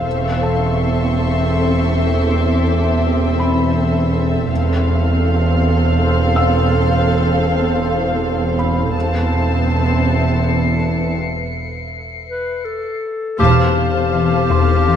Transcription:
0.05 E1 E2 C4 A4 E5 C6 C#6
0.43 A4 A5
2.53 D6
3.39 B5
4.49 E1 E2 C4 A4 C5 F5 C6 F6
6.36 F5 E6
8.59 B5
8.95 E1 E2 B3 C4 A4 B4 E5 A5 C7
9.69 C#7
12.28 B4
12.65 A4
13.39 E1 E2 C4 G4 A4 C5 F5 A5
13.77 E2
14.14 E3
14.50 E2 C6
14.88 E3

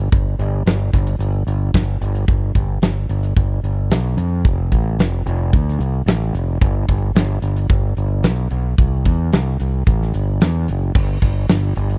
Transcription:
0.12 G1, kick, closed hi-hat
0.39 G1, closed hi-hat
0.66 G1, snare, closed hi-hat
0.93 G1, kick, closed hi-hat
1.07 closed hi-hat
1.19 G1, closed hi-hat
1.47 G1, closed hi-hat
1.74 G1, kick, snare, closed hi-hat
2.01 G1, closed hi-hat
2.15 closed hi-hat
2.28 G1, kick, closed hi-hat
2.55 G1, kick, closed hi-hat
2.82 G1, snare, closed hi-hat
3.09 G1, closed hi-hat
3.23 closed hi-hat
3.36 G1, kick, closed hi-hat
3.63 G1, closed hi-hat
3.90 B1, snare, closed hi-hat
4.17 F2, closed hi-hat
4.45 F1, kick, closed hi-hat
4.72 A1, kick, closed hi-hat
4.99 F1, snare, closed hi-hat
5.26 F1, closed hi-hat
5.53 D2, kick, closed hi-hat
5.68 snare
5.79 C2, closed hi-hat
6.06 A1, snare, closed hi-hat
6.33 F1, closed hi-hat
6.61 G1, kick, closed hi-hat
6.89 G1, kick, closed hi-hat
7.15 G1, snare, closed hi-hat
7.42 G1, closed hi-hat
7.56 closed hi-hat
7.69 G1, kick, closed hi-hat
7.97 G1, closed hi-hat
8.23 B1, snare, closed hi-hat
8.51 B1, closed hi-hat
8.78 C2, kick, closed hi-hat
9.05 E2, kick, closed hi-hat
9.33 C2, snare, closed hi-hat
9.60 C2, closed hi-hat
9.87 A1, kick, closed hi-hat
10.02 snare
10.14 G1, closed hi-hat
10.41 E2, snare, closed hi-hat
10.68 F#1, closed hi-hat
10.95 G1, kick, crash
11.22 G1, kick, closed hi-hat
11.49 G1, snare, closed hi-hat
11.76 G1, closed hi-hat
11.89 closed hi-hat

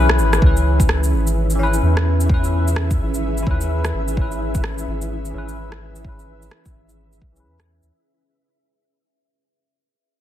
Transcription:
Already playing: B1 E3 C#4 G#4 B4 E5
0.09 cross-stick
0.18 G#1, shaker
0.33 cross-stick, shaker
0.38 C#2 E3 C#4 E4 E5, kick
0.46 B4
0.57 shaker
0.73 B4
0.80 kick, shaker
0.89 cross-stick
0.95 G#4
1.04 shaker
1.12 G#1
1.27 shaker
1.36 E5
1.50 shaker
1.55 E3 C#4
1.63 B4
1.74 shaker
1.83 E2
1.97 cross-stick
2.20 shaker
2.26 E3, kick
2.30 C#4 B4
2.44 shaker
2.68 shaker
2.76 cross-stick
2.91 kick, shaker
3.00 G#1
3.14 shaker
3.38 shaker
3.43 D#2 E4, kick
3.47 C#4 B4
3.61 shaker
3.85 cross-stick, shaker
3.94 G#1
4.08 shaker
4.13 E3 C#4, kick
4.21 B4
4.31 shaker
4.55 kick, shaker
4.64 cross-stick
4.72 E5
4.78 shaker
4.87 G#1
5.02 shaker
5.25 shaker
5.30 G#1 E3 C#4
5.38 B4
5.49 shaker
5.72 cross-stick
5.96 shaker
6.01 E3 C#4, kick
6.09 B4
6.19 shaker
6.42 shaker
6.51 cross-stick
6.66 kick, shaker
6.75 G#1
6.89 shaker
7.13 shaker
7.22 B1, kick
7.32 E3
7.36 C#4 B4, shaker
7.45 E2
7.60 cross-stick, shaker
7.83 D#2, shaker

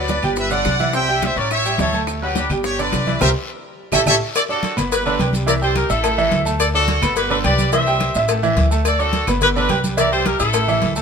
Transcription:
Already playing: D2 B4 D5
0.08 D4 D5 D6, high bongo, high conga, short guiro, maracas
0.22 G1 G3 G4 G5, high conga, low conga, short guiro, claves, maracas
0.36 B4 E5, high bongo, high conga, long guiro, maracas
0.50 D3 D4 D5 F#5, high conga, maracas
0.64 C2, high bongo, low bongo, high conga, short guiro, claves, maracas
0.79 E3 E4 E5, high conga, short guiro, maracas
0.93 C3 C4 C5 E5 G5, high bongo, high conga, long guiro, maracas
1.08 G3 G4 G5, high bongo, high conga
1.22 C5 E5, high bongo, high conga, short guiro, claves, maracas
1.36 A1 C#4 A#4 C#5 D5 C#6, high bongo, high conga, short guiro, maracas
1.50 C#5 E5, high bongo, high conga, long guiro, claves, maracas
1.65 G3 G4 G5, high conga, maracas
1.78 D2 E3 E4 A4 C#5 E5, high bongo, low bongo, high conga, short guiro, maracas
1.93 A3 A4 A5, high bongo, high conga, short guiro, maracas
2.07 high bongo, high conga, long guiro, claves, maracas
2.22 F#3 F#4 G4 B4 F#5, high conga
2.35 D4 D5 D6, high bongo, high conga, short guiro, maracas
2.49 G1 G3 G4 G5, high conga, low conga, short guiro, claves, maracas
2.63 G4 C#5, high bongo, high conga, long guiro, maracas
2.79 D3 D4 B4 D5, high conga, maracas
2.92 C2, high bongo, low bongo, high conga, short guiro, claves, maracas
3.06 E3 E4 E5, high conga, short guiro, maracas
3.20 C2 G4 A#4 C5 E5, low bongo, low conga, long guiro, claves, maracas
3.92 A1 E4 G4 A4 C#5 E5, low bongo, low conga, long guiro, claves, maracas
4.06 A1 E4 G4 A4 C#5 E5, low bongo, low conga, claves, maracas
4.34 A4 D5, cowbell, high conga, long guiro, claves, maracas
4.49 D4 F#4 A4 D5 D6, high conga, maracas
4.63 cowbell, high conga, short guiro, maracas
4.77 G1 B3 B4 B5, cowbell, high conga, low conga, short guiro, claves, maracas
4.92 G4 B4, cowbell, high conga, maracas
5.06 D3 D4 G4 B4 D5, high conga, maracas
5.19 C2 G3 G4 G5, cowbell, high conga, short guiro, claves, maracas
5.33 high conga, short guiro, maracas
5.46 E3 E4 A#4 D5 E5, cowbell, high conga, long guiro, maracas
5.62 G3 G4 A4 C5 G5, high conga, maracas
5.76 G4 A#4, cowbell, high conga, short guiro, claves, maracas
5.89 A1 E4 A4 E5 E6, high conga, short guiro, maracas
6.03 A3 A4 A5, cowbell, high conga, long guiro, claves, maracas
6.18 E3 E4 E5, high conga, maracas
6.31 D2, cowbell, high conga, short guiro, maracas
6.45 A3 A4 A5, high conga, short guiro, maracas
6.60 A4 D5, cowbell, high conga, claves, maracas
6.74 D4 F#4 A4 D5 D6, high conga, maracas
6.88 cowbell, high conga, short guiro, maracas
7.02 G1 B3 B4 B5, cowbell, high conga, low conga, short guiro, claves, maracas
7.16 G4 B4, cowbell, high conga, long guiro, maracas
7.30 D3 D4 G4 B4 D5, high conga, maracas
7.44 C2 G3 G4 B4 D5 G5, cowbell, high conga, short guiro, claves, maracas
7.58 high conga, short guiro, maracas
7.72 E3 E4 C5 E5, cowbell, high conga, maracas
7.86 G3 G4 G5, high conga, maracas
8.00 cowbell, high conga, short guiro, claves, maracas
8.15 A1 E4 E5 E6, high conga, short guiro, maracas
8.28 A3 A4 A5, cowbell, high conga, long guiro, claves, maracas
8.43 E3 E4 E5, high conga, maracas
8.56 D2, cowbell, high conga, short guiro, maracas
8.71 A3 A4 A5, short guiro, maracas
8.85 A4 D5, cowbell, high conga, long guiro, claves, maracas
8.99 D4 F#4 A4 D5 D6, high conga, maracas
9.13 cowbell, high conga, short guiro, maracas
9.27 G1 B3 B4 B5, cowbell, high conga, low conga, short guiro, claves, maracas
9.41 G4 B4, cowbell, high conga, low conga, maracas
9.56 D3 D4 G4 B4 D5, high conga, maracas
9.69 C2 G3 G4 G5, cowbell, high conga, short guiro, claves, maracas
9.84 high conga, short guiro, maracas
9.97 E3 E4 A#4 D5 E5, cowbell, high conga, long guiro, maracas
10.12 G3 G4 A4 C5 G5, high conga, maracas
10.25 G4 A#4, cowbell, high conga, short guiro, claves, maracas
10.39 A1 E4 A4 E5 E6, short guiro, maracas
10.53 A3 A4 A5, cowbell, high conga, long guiro, claves, maracas
10.68 E3 E4 E5, high conga, maracas
10.82 D2, cowbell, high conga, short guiro, maracas
10.96 A3 A4 A5, short guiro, maracas

